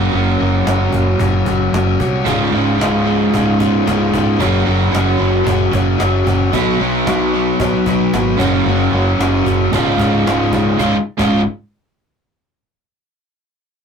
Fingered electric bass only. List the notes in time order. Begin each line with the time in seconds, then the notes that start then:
0.13 F#1
0.41 F#1
0.66 F#1
0.93 F#1
1.20 F#1
1.46 F#1
1.73 F#1
1.99 C2
2.27 C#1
2.53 C#1
2.80 C#1
3.34 C#1
3.88 C#1
4.14 C#1
4.40 F#1
4.67 F#1
4.93 F#1
5.20 F#1
5.46 F#1
5.73 F#1
6.01 F#1
6.27 F#1
6.53 B1
6.80 B1
7.07 B1
7.59 B1
8.13 G#1
8.39 F#1
8.66 F#1
8.92 F#1
9.18 F#1
9.46 F#1
9.73 C#1
9.99 C#1
10.26 C#1
10.53 C#1
10.79 C#1
11.19 C#1